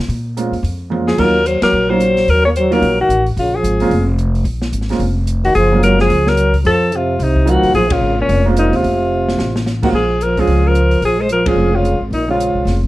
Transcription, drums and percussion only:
0.09 open hi-hat soft
0.37 closed hi-hat medium
0.53 open hi-hat soft
0.64 open hi-hat soft
0.92 high tom soft
1.08 snare medium
1.18 kick medium
1.18 crash medium
1.46 closed hi-hat medium
1.62 snare medium
1.62 ride medium
2.00 closed hi-hat soft
2.17 snare soft
2.17 open hi-hat soft
2.28 open hi-hat soft
2.56 closed hi-hat medium
2.72 open hi-hat soft
2.82 open hi-hat soft
3.10 closed hi-hat soft
3.26 open hi-hat soft
3.37 open hi-hat soft
3.64 closed hi-hat soft
3.80 open hi-hat soft
3.91 open hi-hat soft
4.18 closed hi-hat soft
4.35 open hi-hat soft
4.45 open hi-hat soft
4.62 snare medium
4.73 closed hi-hat soft
4.81 snare soft
4.89 snare soft
4.89 open hi-hat soft
5.00 open hi-hat soft
5.27 closed hi-hat medium
5.45 open hi-hat soft
5.55 open hi-hat soft
5.83 closed hi-hat soft
5.99 snare soft
6.10 open hi-hat soft
6.27 snare medium
6.37 closed hi-hat soft
6.54 kick medium
6.54 open hi-hat soft
6.65 open hi-hat soft
6.92 closed hi-hat medium
7.20 open hi-hat soft
7.36 kick medium
7.47 closed hi-hat medium
7.63 open hi-hat soft
7.74 open hi-hat soft
7.90 kick medium
7.90 ride medium
8.29 open hi-hat soft
8.56 closed hi-hat soft
8.73 open hi-hat soft
8.84 open hi-hat soft
9.28 snare medium
9.39 snare medium
9.56 snare medium
9.66 snare medium
9.83 kick medium
9.83 crash medium
10.21 closed hi-hat soft
10.37 kick soft
10.37 open hi-hat soft
10.47 open hi-hat soft
10.75 closed hi-hat soft
10.91 open hi-hat soft
11.02 open hi-hat soft
11.29 closed hi-hat medium
11.46 kick medium
11.46 ride medium
11.85 closed hi-hat soft
12.13 open hi-hat soft
12.40 closed hi-hat medium
12.67 snare soft
12.67 open hi-hat soft
12.84 kick soft

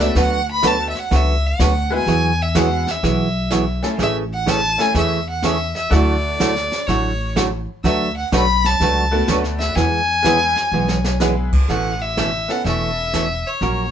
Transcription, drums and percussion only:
0.15 brush sweep soft
0.15 kick soft
0.15 snare soft
0.63 kick soft
0.63 snare medium
0.63 hi-hat pedal medium
0.95 snare soft
1.11 brush sweep soft
1.11 kick soft
1.11 snare soft
1.59 kick soft
1.59 snare medium
1.59 hi-hat pedal medium
2.07 brush sweep medium
2.07 kick soft
2.07 snare soft
2.55 kick soft
2.55 snare medium
2.55 hi-hat pedal medium
2.87 snare soft
3.03 brush sweep soft
3.03 kick soft
3.03 snare medium
3.51 kick soft
3.51 snare medium
3.51 hi-hat pedal medium
3.83 snare soft
3.99 brush sweep soft
3.99 kick soft
3.99 snare soft
4.47 kick soft
4.47 snare medium
4.47 hi-hat pedal medium
4.79 snare soft
4.94 brush sweep soft
4.94 kick soft
4.94 snare soft
5.43 kick soft
5.43 snare medium
5.43 hi-hat pedal medium
5.75 snare soft
5.91 brush sweep soft
5.91 kick soft
5.91 snare soft
6.40 kick soft
6.40 snare medium
6.40 hi-hat pedal medium
6.56 snare soft
6.72 snare soft
6.88 brush sweep medium
6.88 kick soft
6.88 snare soft
7.36 kick soft
7.36 snare medium
7.36 hi-hat pedal medium
7.84 brush sweep soft
7.84 kick soft
7.84 snare soft
8.32 kick soft
8.32 snare medium
8.32 hi-hat pedal medium
8.64 snare soft
8.80 brush sweep soft
8.80 kick soft
8.80 snare soft
9.28 kick soft
9.28 snare medium
9.28 hi-hat pedal medium
9.44 snare soft
9.60 snare soft
9.76 brush sweep soft
9.76 kick soft
9.76 snare soft
10.24 kick soft
10.24 snare medium
10.24 hi-hat pedal medium
10.56 snare soft
10.88 snare medium
11.04 snare medium
11.20 snare soft
11.20 hi-hat pedal medium
11.52 kick medium
11.52 crash medium
11.68 brush sweep soft
11.68 snare soft
12.17 kick soft
12.17 snare medium
12.17 hi-hat pedal medium
12.49 snare soft
12.65 brush sweep soft
12.65 kick soft
12.65 snare soft
13.13 kick soft
13.13 snare medium
13.13 hi-hat pedal medium
13.61 brush sweep soft
13.61 kick soft
13.61 snare soft

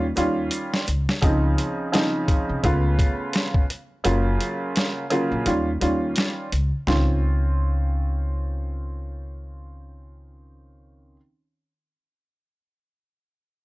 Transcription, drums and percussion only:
0.16 closed hi-hat medium
0.16 shaker medium
0.51 closed hi-hat medium
0.51 shaker medium
0.74 snare medium
0.87 closed hi-hat medium
0.87 shaker soft
1.09 snare medium
1.22 kick loud
1.22 closed hi-hat medium
1.58 closed hi-hat medium
1.94 snare loud
1.94 closed hi-hat medium
2.28 kick medium
2.28 closed hi-hat medium
2.64 kick medium
2.64 closed hi-hat medium
2.99 kick medium
2.99 closed hi-hat medium
3.33 snare loud
3.33 closed hi-hat medium
3.54 kick loud
3.70 closed hi-hat medium
4.05 closed hi-hat medium
4.41 closed hi-hat medium
4.76 snare loud
4.76 closed hi-hat medium
5.11 closed hi-hat medium
5.46 closed hi-hat medium
5.81 closed hi-hat medium
6.16 snare loud
6.16 closed hi-hat medium
6.52 closed hi-hat medium
6.87 snare loud
6.87 floor tom loud

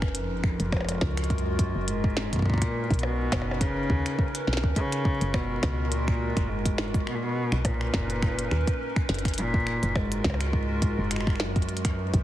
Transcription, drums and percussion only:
0.02 finger snap medium
0.02 kick loud
0.15 closed hi-hat loud
0.44 finger snap medium
0.44 kick loud
0.60 closed hi-hat medium
0.72 finger snap medium
0.72 kick loud
0.72 percussion blips medium
0.77 percussion blips medium
0.81 percussion blips medium
0.85 percussion blips soft
0.89 closed hi-hat loud
0.89 percussion blips soft
0.92 percussion blips soft
0.95 percussion blips soft
0.98 snare loud
0.98 percussion blips soft
1.01 kick loud
1.01 percussion blips medium
1.17 finger snap medium
1.17 closed hi-hat medium
1.24 closed hi-hat soft
1.30 kick loud
1.30 closed hi-hat soft
1.38 closed hi-hat soft
1.59 kick loud
1.59 closed hi-hat medium
1.88 closed hi-hat medium
2.04 kick loud
2.17 snare loud
2.33 kick medium
2.33 closed hi-hat medium
2.36 kick medium
2.39 kick medium
2.42 kick medium
2.46 kick medium
2.50 kick loud
2.54 kick loud
2.58 kick loud
2.62 finger snap medium
2.62 kick loud
2.62 closed hi-hat medium
2.90 kick loud
2.90 closed hi-hat soft
2.94 closed hi-hat soft
2.99 closed hi-hat soft
3.03 percussion blips medium
3.32 finger snap medium
3.32 kick loud
3.32 snare loud
3.32 closed hi-hat medium
3.32 percussion blips medium
3.42 percussion blips medium
3.51 percussion blips medium
3.61 finger snap medium
3.61 kick loud
3.61 closed hi-hat medium
3.90 kick loud
4.06 finger snap medium
4.06 closed hi-hat medium
4.19 kick loud
4.35 finger snap medium
4.35 closed hi-hat medium
4.47 snare medium
4.53 snare medium
4.57 snare loud
4.64 kick loud
4.76 kick loud
4.76 closed hi-hat medium
4.92 finger snap medium
4.92 closed hi-hat medium
5.05 kick loud
5.21 closed hi-hat medium
5.34 finger snap medium
5.34 kick loud
5.34 percussion blips medium
5.63 finger snap soft
5.63 kick loud
5.63 snare loud
5.63 closed hi-hat medium
5.63 percussion blips medium
5.92 closed hi-hat medium
6.08 finger snap medium
6.08 kick loud
6.37 finger snap soft
6.37 kick loud
6.37 closed hi-hat soft
6.66 kick loud
6.66 closed hi-hat medium
6.78 finger snap medium
6.78 snare loud
6.94 kick loud
6.94 closed hi-hat soft
7.07 finger snap medium
7.52 finger snap medium
7.65 kick loud
7.65 closed hi-hat medium
7.65 percussion blips loud
7.81 finger snap medium
7.94 kick loud
7.94 snare loud
8.10 closed hi-hat soft
8.22 finger snap medium
8.22 kick loud
8.39 closed hi-hat medium
8.51 finger snap medium
8.67 kick loud
8.67 closed hi-hat soft
8.96 finger snap medium
8.96 kick loud
9.09 snare loud
9.09 closed hi-hat soft
9.14 closed hi-hat soft
9.19 closed hi-hat soft
9.25 finger snap medium
9.25 kick loud
9.25 closed hi-hat medium
9.28 closed hi-hat medium
9.34 closed hi-hat medium
9.38 closed hi-hat medium
9.54 kick loud
9.67 finger snap medium
9.83 closed hi-hat medium
9.96 finger snap medium
9.96 kick loud
9.96 percussion blips loud
10.12 closed hi-hat medium
10.24 kick loud
10.24 snare loud
10.24 percussion blips soft
10.30 percussion blips medium
10.34 percussion blips medium
10.41 finger snap medium
10.41 closed hi-hat medium
10.53 kick loud
10.82 kick loud
10.82 closed hi-hat medium
11.11 finger snap medium
11.11 closed hi-hat medium
11.16 finger snap medium
11.21 finger snap medium
11.27 finger snap soft
11.27 kick loud
11.30 finger snap soft
11.36 finger snap soft
11.40 finger snap medium
11.40 snare loud
11.56 kick loud
11.56 closed hi-hat soft
11.62 closed hi-hat soft
11.69 closed hi-hat soft
11.77 closed hi-hat soft
11.85 finger snap medium
11.85 kick loud
11.85 closed hi-hat medium
12.14 kick loud
12.14 closed hi-hat medium

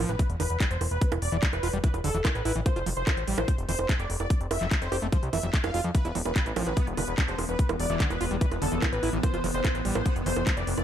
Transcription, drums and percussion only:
0.09 closed hi-hat soft
0.19 kick loud
0.19 closed hi-hat medium
0.30 closed hi-hat soft
0.40 open hi-hat loud
0.40 high bongo soft
0.50 closed hi-hat soft
0.60 kick loud
0.60 clap loud
0.60 closed hi-hat loud
0.71 closed hi-hat soft
0.81 open hi-hat medium
0.81 high bongo soft
0.91 closed hi-hat soft
1.01 kick loud
1.01 closed hi-hat loud
1.12 closed hi-hat soft
1.12 high bongo medium
1.22 open hi-hat loud
1.32 closed hi-hat soft
1.43 kick loud
1.43 clap loud
1.43 closed hi-hat medium
1.53 closed hi-hat soft
1.53 high bongo soft
1.63 open hi-hat medium
1.73 closed hi-hat soft
1.84 kick loud
1.84 closed hi-hat medium
1.94 closed hi-hat soft
1.94 high bongo soft
2.04 open hi-hat loud
2.15 closed hi-hat soft
2.25 kick loud
2.25 clap loud
2.25 closed hi-hat loud
2.25 high bongo medium
2.35 closed hi-hat soft
2.45 open hi-hat loud
2.66 kick loud
2.66 closed hi-hat loud
2.66 high bongo soft
2.76 closed hi-hat soft
2.86 open hi-hat loud
2.97 closed hi-hat soft
3.07 kick loud
3.07 clap loud
3.07 closed hi-hat medium
3.07 high bongo soft
3.17 closed hi-hat soft
3.28 open hi-hat loud
3.38 high bongo medium
3.48 kick loud
3.48 closed hi-hat medium
3.58 closed hi-hat soft
3.69 open hi-hat loud
3.79 high bongo soft
3.89 kick loud
3.89 clap loud
3.89 closed hi-hat medium
3.99 closed hi-hat soft
4.10 open hi-hat loud
4.20 closed hi-hat soft
4.20 high bongo soft
4.30 kick loud
4.30 closed hi-hat medium
4.41 closed hi-hat soft
4.51 open hi-hat loud
4.51 high bongo medium
4.61 clap soft
4.61 closed hi-hat soft
4.71 kick loud
4.71 clap loud
4.71 closed hi-hat medium
4.82 closed hi-hat soft
4.92 open hi-hat loud
4.92 high bongo soft
5.02 closed hi-hat soft
5.12 kick loud
5.12 closed hi-hat medium
5.23 closed hi-hat soft
5.33 open hi-hat loud
5.33 high bongo soft
5.43 closed hi-hat soft
5.54 kick loud
5.54 clap loud
5.54 closed hi-hat medium
5.64 closed hi-hat soft
5.64 high bongo medium
5.74 open hi-hat loud
5.84 closed hi-hat soft
5.95 kick loud
5.95 closed hi-hat medium
6.05 closed hi-hat soft
6.15 open hi-hat loud
6.25 closed hi-hat soft
6.25 high bongo soft
6.36 kick loud
6.36 clap loud
6.36 closed hi-hat medium
6.46 closed hi-hat soft
6.56 open hi-hat medium
6.56 high bongo medium
6.67 closed hi-hat soft
6.77 kick loud
6.77 closed hi-hat medium
6.87 closed hi-hat soft
6.97 open hi-hat loud
6.97 high bongo soft
7.08 closed hi-hat soft
7.18 kick loud
7.18 clap loud
7.18 closed hi-hat medium
7.28 closed hi-hat soft
7.38 open hi-hat medium
7.38 high bongo soft
7.49 closed hi-hat soft
7.59 kick loud
7.59 closed hi-hat loud
7.69 closed hi-hat soft
7.69 high bongo medium
7.80 open hi-hat loud
8.00 kick loud
8.00 clap loud
8.00 closed hi-hat medium
8.10 closed hi-hat soft
8.10 high bongo soft
8.21 open hi-hat medium
8.31 closed hi-hat soft
8.41 kick loud
8.41 closed hi-hat medium
8.51 closed hi-hat soft
8.51 high bongo soft
8.62 open hi-hat loud
8.72 closed hi-hat soft
8.82 kick loud
8.82 clap loud
8.82 closed hi-hat medium
8.82 high bongo medium
8.93 closed hi-hat soft
9.03 open hi-hat medium
9.13 closed hi-hat soft
9.23 kick loud
9.23 closed hi-hat loud
9.23 high bongo soft
9.34 closed hi-hat soft
9.44 open hi-hat loud
9.54 closed hi-hat soft
9.64 kick loud
9.64 clap loud
9.64 closed hi-hat medium
9.64 high bongo soft
9.75 closed hi-hat soft
9.85 open hi-hat medium
9.95 closed hi-hat soft
9.95 high bongo medium
10.06 kick loud
10.06 closed hi-hat medium
10.16 closed hi-hat soft
10.26 open hi-hat loud
10.36 closed hi-hat soft
10.36 high bongo soft
10.47 kick loud
10.47 clap loud
10.47 closed hi-hat loud
10.57 closed hi-hat soft
10.67 open hi-hat medium
10.78 closed hi-hat soft
10.78 high bongo soft

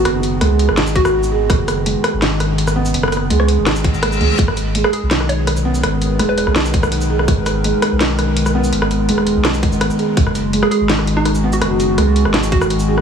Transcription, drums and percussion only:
0.05 cross-stick medium
0.05 closed hi-hat medium
0.23 closed hi-hat medium
0.23 shaker soft
0.41 cross-stick medium
0.41 closed hi-hat medium
0.59 closed hi-hat medium
0.69 cross-stick medium
0.77 snare loud
0.77 closed hi-hat medium
0.87 shaker medium
0.95 kick loud
0.95 closed hi-hat medium
1.05 cross-stick medium
1.05 shaker soft
1.23 shaker medium
1.50 kick loud
1.50 cross-stick medium
1.50 closed hi-hat medium
1.68 cross-stick medium
1.68 closed hi-hat medium
1.68 shaker soft
1.86 closed hi-hat medium
2.04 cross-stick medium
2.04 closed hi-hat medium
2.22 snare loud
2.22 closed hi-hat medium
2.40 cross-stick medium
2.40 closed hi-hat medium
2.58 closed hi-hat medium
2.67 cross-stick medium
2.67 shaker medium
2.86 shaker medium
2.94 closed hi-hat medium
3.03 cross-stick medium
3.08 cross-stick medium
3.12 cross-stick medium
3.12 closed hi-hat medium
3.12 shaker soft
3.17 cross-stick soft
3.30 closed hi-hat medium
3.40 cross-stick medium
3.48 closed hi-hat medium
3.67 cross-stick medium
3.67 snare loud
3.67 closed hi-hat medium
3.76 shaker medium
3.84 kick loud
3.84 closed hi-hat medium
3.94 shaker soft
4.03 cross-stick medium
4.03 closed hi-hat medium
4.12 shaker medium
4.21 closed hi-hat soft
4.39 kick loud
4.39 closed hi-hat medium
4.48 cross-stick medium
4.57 closed hi-hat medium
4.57 shaker soft
4.75 closed hi-hat medium
4.84 cross-stick medium
4.93 closed hi-hat medium
5.11 snare loud
5.11 closed hi-hat medium
5.20 cross-stick medium
5.29 closed hi-hat medium
5.47 cross-stick medium
5.47 closed hi-hat medium
5.57 shaker medium
5.75 shaker medium
5.83 cross-stick medium
5.83 closed hi-hat medium
6.02 closed hi-hat medium
6.02 shaker soft
6.19 cross-stick medium
6.19 closed hi-hat medium
6.38 closed hi-hat medium
6.47 cross-stick medium
6.56 snare loud
6.56 closed hi-hat medium
6.65 shaker medium
6.74 kick loud
6.74 closed hi-hat medium
6.83 cross-stick medium
6.83 shaker soft
6.92 closed hi-hat medium
7.01 shaker medium
7.19 cross-stick medium
7.28 kick loud
7.28 closed hi-hat medium
7.46 cross-stick soft
7.46 closed hi-hat medium
7.46 shaker soft
7.64 closed hi-hat medium
7.82 cross-stick medium
7.82 closed hi-hat medium
8.01 snare loud
8.01 closed hi-hat medium
8.19 cross-stick soft
8.19 closed hi-hat medium
8.37 closed hi-hat medium
8.46 cross-stick medium
8.46 shaker medium
8.64 shaker medium
8.73 closed hi-hat medium
8.82 cross-stick medium
8.91 closed hi-hat medium
8.91 shaker soft
9.09 closed hi-hat medium
9.18 cross-stick medium
9.27 closed hi-hat medium
9.45 cross-stick medium
9.45 snare loud
9.45 closed hi-hat medium
9.54 shaker medium
9.63 kick loud
9.63 closed hi-hat medium
9.72 shaker soft
9.81 cross-stick medium
9.81 closed hi-hat medium
9.90 shaker medium
9.99 closed hi-hat soft
10.17 kick loud
10.17 closed hi-hat medium
10.27 cross-stick medium
10.35 closed hi-hat medium
10.35 shaker soft
10.53 closed hi-hat medium
10.63 cross-stick medium
10.71 closed hi-hat medium
10.90 snare loud
10.90 closed hi-hat medium
10.99 cross-stick medium
11.07 closed hi-hat medium
11.25 cross-stick medium
11.25 closed hi-hat medium
11.35 shaker medium
11.53 shaker medium
11.62 cross-stick medium
11.62 closed hi-hat medium
11.80 closed hi-hat medium
11.80 shaker soft
11.98 cross-stick medium
11.98 closed hi-hat medium
12.16 closed hi-hat medium
12.25 cross-stick medium
12.34 snare loud
12.34 closed hi-hat medium
12.43 shaker medium
12.52 kick loud
12.52 closed hi-hat medium
12.61 cross-stick medium
12.61 shaker soft
12.70 closed hi-hat medium
12.79 shaker medium
12.98 cross-stick medium

